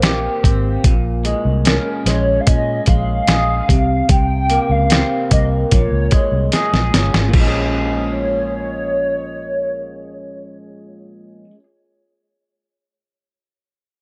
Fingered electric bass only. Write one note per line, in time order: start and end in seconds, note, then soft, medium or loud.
0.00 0.27 A#1 medium
0.44 0.76 G#1 medium
0.84 1.33 A#1 loud
1.45 1.77 C2 medium
2.06 2.38 A#1 loud
2.47 2.79 A#2 loud
2.87 3.20 A#1 medium
3.28 3.60 A#1 medium
3.69 4.01 C2 medium
4.09 4.57 C2 loud
4.69 5.02 C#2 medium
5.31 5.63 C2 loud
5.72 5.88 A#1 loud
5.91 6.08 C#2 medium
6.32 6.48 C2 medium
6.73 6.89 A#1 loud
6.94 7.09 G1 medium
7.14 7.30 G#1 medium
7.33 11.45 A#1 medium